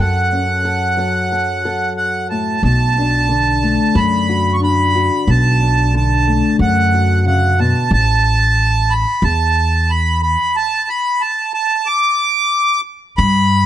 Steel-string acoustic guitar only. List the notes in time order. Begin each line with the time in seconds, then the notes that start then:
0.00 F#2 A4
0.32 C#4
0.65 A4
0.97 F#3 A4
1.32 A4
1.65 A4
2.31 A2
2.63 B2
2.98 D4
3.29 D3
3.63 A3
3.96 D4
4.29 F#4
4.62 D4
4.95 F#4
5.27 B2
5.61 D4
5.94 D3
6.27 A3
6.94 F#4
7.26 C#3
7.59 B2